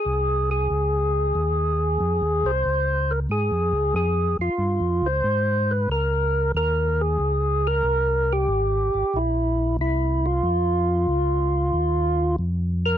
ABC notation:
X:1
M:4/4
L:1/8
Q:"Swing" 1/4=92
K:Dblyd
V:1 name="Tonewheel organ"
A A6 c- | c B A2 A F2 c- | c =B _B2 B A2 B- | B G3 =E2 E F- |
F6 z B |]
V:2 name="Tonewheel organ" clef=bass
C,,2 D,,2 E,,2 (3F,, E,, C,, | D,,2 (3A,, F,, D,, F,, F,, (3G,, F,, D,, | A,,2 D,,2 E,,2 D,,2 | C,,2 A,,, A,,, B,,,2 C,,2 |
F,,2 D,,2 E,,2 F,,2 |]